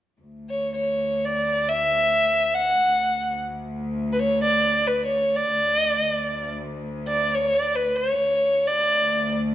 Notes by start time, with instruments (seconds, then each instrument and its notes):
0.19 cello section D2
0.50 violin C#5
0.73 violin C#5
1.25 violin D5
1.69 violin E5
2.55 violin F#5
2.85 cello section D2
4.12 violin B4
4.21 violin C#5
4.42 violin D5
4.87 violin B4
5.05 violin C#5
5.36 violin D5
5.53 cello section D2
5.77 violin D#5
5.89 violin D5
7.08 violin D5
7.35 violin C#5
7.54 violin D5
7.76 violin B4
7.96 violin C#5
8.20 cello section D2
8.67 violin D5